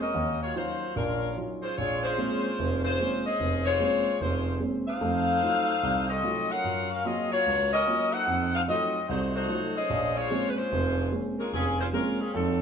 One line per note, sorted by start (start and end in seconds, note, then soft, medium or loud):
0.01 0.38 C#4 medium
0.01 0.38 F#4 medium
0.01 0.38 A#4 medium
0.01 0.38 D#5 medium
0.14 0.49 D#2 medium
0.42 0.55 A#3 medium
0.42 0.55 F4 medium
0.42 0.55 F#4 medium
0.42 0.55 C#5 medium
0.54 0.82 F#3 medium
0.54 0.93 A#3 medium
0.54 0.82 C#4 soft
0.54 0.82 D#4 soft
0.54 0.82 F4 medium
0.54 0.93 F4 medium
0.54 0.93 F#4 medium
0.54 0.93 C5 medium
0.96 1.31 A#1 medium
0.96 1.36 F#3 medium
0.96 1.36 C#4 medium
0.96 1.36 F4 medium
0.96 1.36 A#4 medium
1.36 1.63 F#3 soft
1.36 1.64 C#4 soft
1.36 1.64 D#4 soft
1.36 1.64 F4 soft
1.62 1.75 G#3 medium
1.62 1.75 C#4 medium
1.62 1.75 F4 medium
1.62 1.76 C5 medium
1.77 2.12 A#1 medium
1.77 2.02 G#3 medium
1.77 2.02 C4 medium
1.77 2.01 F4 medium
1.77 2.03 C#5 loud
2.02 2.80 G#3 medium
2.02 2.80 C#4 medium
2.02 2.80 F4 medium
2.02 2.80 C5 medium
2.18 2.45 G#3 soft
2.18 2.45 A#3 soft
2.18 2.45 C4 soft
2.18 2.45 C#4 medium
2.59 2.93 F1 medium
2.84 3.21 G#3 medium
2.84 3.22 C#4 medium
2.84 3.21 F4 medium
2.84 3.21 C5 loud
3.00 3.26 G#3 soft
3.00 3.26 A#3 soft
3.00 3.27 C4 soft
3.00 3.27 C#4 medium
3.25 3.66 C#4 medium
3.25 3.66 G#4 medium
3.25 3.64 C5 medium
3.25 3.65 D#5 loud
3.40 3.74 F1 medium
3.65 4.17 G#3 medium
3.65 4.17 F4 medium
3.65 4.17 C5 medium
3.65 4.16 C#5 medium
3.80 4.07 G#3 soft
3.80 4.07 A#3 soft
3.80 4.07 C4 soft
3.80 4.07 C#4 medium
4.20 4.55 F1 medium
4.20 4.58 G#3 medium
4.20 4.58 C#4 medium
4.20 4.58 F4 medium
4.20 4.58 C5 medium
4.60 4.88 G#3 soft
4.60 4.88 A#3 soft
4.60 4.88 C4 soft
4.60 4.88 C#4 soft
4.87 6.05 D#4 medium
4.87 6.05 A4 medium
4.87 6.05 C5 loud
4.87 6.05 F5 loud
5.01 5.36 F2 medium
5.01 5.36 A3 medium
5.42 5.70 F#3 soft
5.42 5.70 A3 soft
5.42 5.70 F4 medium
5.83 6.18 C2 medium
6.08 6.49 C4 medium
6.08 6.49 F#4 medium
6.08 6.49 A4 medium
6.08 6.49 D#5 medium
6.23 6.51 F#3 soft
6.23 6.51 A3 soft
6.23 6.51 D#4 soft
6.23 6.51 F4 soft
6.50 6.89 C#4 medium
6.50 6.91 F4 medium
6.50 6.89 A#4 medium
6.50 6.90 F#5 loud
6.64 6.99 F#2 medium
6.90 7.05 C#4 medium
6.90 7.05 F#4 medium
6.90 7.05 A#4 medium
6.90 7.05 F5 medium
7.05 7.32 F#3 soft
7.05 7.32 A#3 soft
7.05 7.31 C4 medium
7.05 7.32 F4 soft
7.05 7.31 F4 medium
7.05 7.31 G#4 medium
7.05 7.31 D#5 medium
7.32 7.69 A#3 medium
7.32 7.69 F4 medium
7.32 7.69 F#4 medium
7.32 7.69 C#5 loud
7.46 7.81 C#2 medium
7.72 8.09 C#4 medium
7.72 8.10 F#4 medium
7.72 8.10 A#4 medium
7.72 8.10 D#5 medium
7.87 8.14 F#3 soft
7.87 8.14 A#3 soft
7.87 8.14 F4 soft
8.12 8.53 D#4 medium
8.12 8.52 A4 medium
8.12 8.53 C5 medium
8.12 8.52 F#5 loud
8.27 8.62 F2 medium
8.54 8.60 D#4 medium
8.54 8.60 A4 medium
8.54 8.60 C5 medium
8.54 8.60 F5 medium
8.67 8.95 F#3 medium
8.67 8.95 A3 soft
8.67 9.06 C4 medium
8.67 8.95 D#4 soft
8.67 8.95 F4 medium
8.67 9.06 F#4 medium
8.67 9.06 A4 medium
8.67 9.06 D#5 medium
9.08 9.44 C2 medium
9.08 9.32 A3 medium
9.08 9.32 D#4 medium
9.08 9.32 F#4 medium
9.08 9.32 C5 medium
9.35 9.72 A3 medium
9.35 9.72 D#4 medium
9.35 9.72 F#4 medium
9.35 9.73 C5 medium
9.48 9.76 F#3 soft
9.48 9.76 A3 soft
9.48 9.76 D#4 soft
9.48 9.76 F4 medium
9.76 10.16 C#4 medium
9.76 10.16 G#4 medium
9.76 10.15 C5 medium
9.76 10.16 D#5 loud
9.90 10.24 A#1 medium
10.16 10.47 G#3 medium
10.16 10.47 F4 medium
10.16 10.47 C5 medium
10.16 10.48 C#5 medium
10.30 10.58 G#3 medium
10.30 10.58 A#3 soft
10.30 10.58 C4 soft
10.30 10.58 C#4 medium
10.49 10.57 B4 medium
10.57 11.12 G#3 medium
10.57 11.12 C#4 medium
10.57 11.12 F4 medium
10.57 11.12 C5 loud
10.72 11.06 F1 medium
11.12 11.39 G#3 soft
11.12 11.39 A#3 soft
11.12 11.39 C4 soft
11.12 11.39 C#4 soft
11.38 11.51 G#3 medium
11.38 11.51 C#4 medium
11.38 11.51 F4 medium
11.38 11.51 A#4 medium
11.53 11.87 F1 medium
11.53 11.76 F3 medium
11.53 11.77 C4 medium
11.53 11.77 C#4 medium
11.53 11.76 G#4 loud
11.80 11.86 G#3 medium
11.80 11.86 C#4 medium
11.80 11.86 F4 medium
11.80 11.86 C5 medium
11.93 12.20 G#3 soft
11.93 12.17 G#3 medium
11.93 12.20 A#3 soft
11.93 12.20 C4 soft
11.93 12.20 C#4 medium
11.93 12.17 C#4 medium
11.93 12.17 F4 medium
11.93 12.17 A#4 medium
12.20 12.33 F3 medium
12.20 12.33 C4 medium
12.20 12.33 C#4 medium
12.20 12.33 G#4 medium
12.34 12.62 F2 medium
12.34 12.62 F#3 medium
12.34 12.62 C4 medium
12.34 12.62 D#4 medium
12.34 12.62 A4 medium